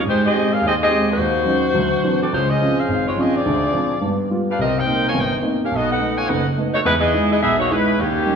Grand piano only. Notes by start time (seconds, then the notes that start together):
0.05 G#2
0.33 G#3 C4 G4
0.61 D#2
0.90 G#3 C4 G4
1.17 D#2
1.45 F#3 C#4 D#4
1.74 D2 F#3
2.04 E3 F#3 C4 D4
2.33 C#2
2.61 F3 C4 C#4
2.88 G#1
3.16 F3 C4 C#4
3.46 D2 D3
3.73 F3 C4 D4
4.01 G2 B3
4.30 G3 B3 F4
4.59 C2
4.86 A#3 C4 D#4
5.14 G1
5.42 A#3 C4 D#4
5.71 B1
6.00 A3 B3 D#4
6.30 F#1
6.57 A3 B3 D#4
6.85 E2
7.13 G#3 D#4 E4
7.42 B1
7.71 G#3 D#4 E4
7.99 D#2
8.26 G3 C#4 D#4